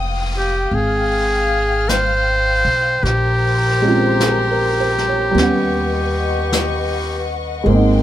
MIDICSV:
0, 0, Header, 1, 6, 480
1, 0, Start_track
1, 0, Tempo, 1158301
1, 1260, Time_signature, 4, 2, 24, 8
1, 3326, End_track
2, 0, Start_track
2, 0, Title_t, "String section"
2, 0, Program_c, 0, 48
2, 0, Note_on_c, 0, 77, 50
2, 0, Note_on_c, 0, 79, 54
2, 0, Note_on_c, 0, 87, 63
2, 293, Note_off_c, 0, 87, 0
2, 315, Note_on_c, 0, 89, 61
2, 1244, Note_off_c, 0, 79, 0
2, 1246, Note_off_c, 0, 77, 0
2, 1258, Note_off_c, 0, 89, 0
2, 1266, Note_on_c, 0, 82, 51
2, 1267, Note_on_c, 0, 72, 54
2, 1270, Note_on_c, 0, 70, 52
2, 1270, Note_on_c, 0, 84, 64
2, 2214, Note_off_c, 0, 72, 0
2, 2214, Note_off_c, 0, 82, 0
2, 2215, Note_off_c, 0, 70, 0
2, 2215, Note_off_c, 0, 84, 0
2, 2223, Note_on_c, 0, 71, 62
2, 2223, Note_on_c, 0, 78, 56
2, 2224, Note_on_c, 0, 75, 58
2, 2230, Note_on_c, 0, 85, 68
2, 3170, Note_on_c, 0, 79, 54
2, 3171, Note_off_c, 0, 71, 0
2, 3172, Note_off_c, 0, 75, 0
2, 3173, Note_on_c, 0, 70, 57
2, 3175, Note_off_c, 0, 85, 0
2, 3175, Note_on_c, 0, 84, 64
2, 3326, Note_off_c, 0, 70, 0
2, 3326, Note_off_c, 0, 78, 0
2, 3326, Note_off_c, 0, 79, 0
2, 3326, Note_off_c, 0, 84, 0
2, 3326, End_track
3, 0, Start_track
3, 0, Title_t, "Muted trumpet"
3, 0, Program_c, 1, 59
3, 156, Note_on_c, 1, 67, 63
3, 309, Note_on_c, 1, 68, 77
3, 315, Note_off_c, 1, 67, 0
3, 784, Note_on_c, 1, 72, 85
3, 790, Note_off_c, 1, 68, 0
3, 1260, Note_on_c, 1, 67, 71
3, 1266, Note_off_c, 1, 72, 0
3, 3021, Note_off_c, 1, 67, 0
3, 3326, End_track
4, 0, Start_track
4, 0, Title_t, "Grand piano"
4, 0, Program_c, 2, 0
4, 0, Control_c, 2, 64, 127
4, 0, Note_on_c, 2, 56, 44
4, 0, Note_on_c, 2, 60, 37
4, 0, Note_on_c, 2, 63, 36
4, 1263, Note_off_c, 2, 56, 0
4, 1266, Control_c, 2, 64, 0
4, 1267, Note_off_c, 2, 60, 0
4, 1270, Note_off_c, 2, 63, 0
4, 1337, Control_c, 2, 64, 127
4, 1582, Note_on_c, 2, 56, 42
4, 1590, Note_on_c, 2, 60, 37
4, 1598, Note_on_c, 2, 61, 36
4, 1606, Note_on_c, 2, 65, 45
4, 1752, Note_on_c, 2, 68, 36
4, 1871, Note_on_c, 2, 70, 41
4, 1971, Note_off_c, 2, 68, 0
4, 1990, Note_on_c, 2, 72, 41
4, 2071, Note_off_c, 2, 70, 0
4, 2106, Note_on_c, 2, 73, 46
4, 2134, Note_off_c, 2, 72, 0
4, 2201, Note_on_c, 2, 55, 44
4, 2217, Note_on_c, 2, 59, 38
4, 2220, Note_off_c, 2, 56, 0
4, 2223, Note_off_c, 2, 61, 0
4, 2224, Note_off_c, 2, 60, 0
4, 2224, Control_c, 2, 64, 0
4, 2230, Note_on_c, 2, 61, 41
4, 2232, Note_off_c, 2, 65, 0
4, 2246, Note_on_c, 2, 78, 47
4, 2271, Note_off_c, 2, 73, 0
4, 2309, Control_c, 2, 64, 127
4, 3164, Note_on_c, 2, 56, 51
4, 3170, Note_off_c, 2, 55, 0
4, 3178, Note_off_c, 2, 59, 0
4, 3178, Note_on_c, 2, 58, 45
4, 3184, Note_off_c, 2, 61, 0
4, 3185, Control_c, 2, 64, 0
4, 3190, Note_on_c, 2, 60, 45
4, 3192, Note_off_c, 2, 78, 0
4, 3210, Note_on_c, 2, 63, 55
4, 3257, Control_c, 2, 64, 127
4, 3326, Note_off_c, 2, 56, 0
4, 3326, Note_off_c, 2, 58, 0
4, 3326, Note_off_c, 2, 60, 0
4, 3326, Note_off_c, 2, 63, 0
4, 3326, End_track
5, 0, Start_track
5, 0, Title_t, "Upright bass"
5, 0, Program_c, 3, 32
5, 0, Note_on_c, 3, 29, 63
5, 281, Note_off_c, 3, 29, 0
5, 296, Note_on_c, 3, 32, 63
5, 1083, Note_off_c, 3, 32, 0
5, 1097, Note_on_c, 3, 35, 57
5, 1247, Note_off_c, 3, 35, 0
5, 1255, Note_on_c, 3, 34, 67
5, 2201, Note_off_c, 3, 34, 0
5, 2215, Note_on_c, 3, 39, 68
5, 3160, Note_off_c, 3, 39, 0
5, 3174, Note_on_c, 3, 32, 72
5, 3326, Note_off_c, 3, 32, 0
5, 3326, End_track
6, 0, Start_track
6, 0, Title_t, "Drums"
6, 306, Note_on_c, 9, 25, 29
6, 783, Note_off_c, 9, 25, 0
6, 783, Note_on_c, 9, 25, 30
6, 783, Note_on_c, 9, 38, 36
6, 783, Note_on_c, 9, 44, 38
6, 825, Note_off_c, 9, 38, 0
6, 825, Note_off_c, 9, 44, 0
6, 1265, Note_off_c, 9, 25, 0
6, 1265, Note_on_c, 9, 25, 36
6, 1265, Note_on_c, 9, 38, 25
6, 1306, Note_off_c, 9, 38, 0
6, 1742, Note_off_c, 9, 25, 0
6, 1742, Note_on_c, 9, 25, 31
6, 1742, Note_on_c, 9, 38, 42
6, 1742, Note_on_c, 9, 44, 41
6, 1784, Note_off_c, 9, 38, 0
6, 1784, Note_off_c, 9, 44, 0
6, 2064, Note_on_c, 9, 38, 22
6, 2106, Note_off_c, 9, 38, 0
6, 2228, Note_off_c, 9, 25, 0
6, 2228, Note_on_c, 9, 25, 30
6, 2228, Note_on_c, 9, 38, 27
6, 2270, Note_off_c, 9, 38, 0
6, 2704, Note_off_c, 9, 25, 0
6, 2704, Note_on_c, 9, 25, 25
6, 2704, Note_on_c, 9, 38, 36
6, 2704, Note_on_c, 9, 44, 47
6, 2745, Note_off_c, 9, 38, 0
6, 2745, Note_off_c, 9, 44, 0
6, 3183, Note_off_c, 9, 25, 0
6, 3183, Note_on_c, 9, 25, 28
6, 3326, Note_off_c, 9, 25, 0
6, 3326, End_track
0, 0, End_of_file